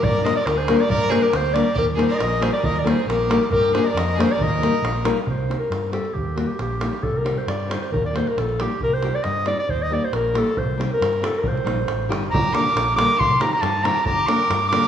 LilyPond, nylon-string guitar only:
\new Staff \with { instrumentName = "Nylon-string guitar" } { \time 2/4 \key ees \major \tempo 4 = 137 r8 <g bes d' g' bes'>8 r8 <g bes d' g' bes'>8 | r8 <g bes d' g' bes'>8 r8 <g bes d' g' bes'>8 | r8 <g bes ees' g' bes'>8 r8 <g bes ees' g' bes'>8 | r8 <g bes ees' g' bes'>8 r8 <g bes ees' g' bes'>8 |
r8 <g bes d' g' bes'>8 r8 <g bes d' g' bes'>8 | r8 <g bes ees' g' bes'>8 r8 <g bes ees' g' bes'>8 | \key c \minor r8 <g c' ees' g'>8 r8 <g c' ees' g'>8 | r8 <g bes ees' g'>8 r8 <g bes ees' g'>8 |
r8 <g c' ees' g'>8 r8 <g c' ees' g'>8 | r8 <g bes ees' g'>8 r8 <g bes ees' g'>8 | r8 <g c' ees' g'>8 r8 <g c' ees' g'>8 | r8 <g bes ees' g'>8 r8 <g bes ees' g'>8 |
r8 <g c' ees' g'>8 r8 <g c' ees' g'>8 | r8 <g c' ees' g'>8 r8 <g c' ees' g'>8 | r8 <d g bes d' g'>8 r8 <d g bes d' g'>8 | r8 <ees g c' ees' g'>8 r8 <ees g c' ees' g'>8 |
r8 <d g bes d' g'>8 r8 <d g bes d' g'>8 | }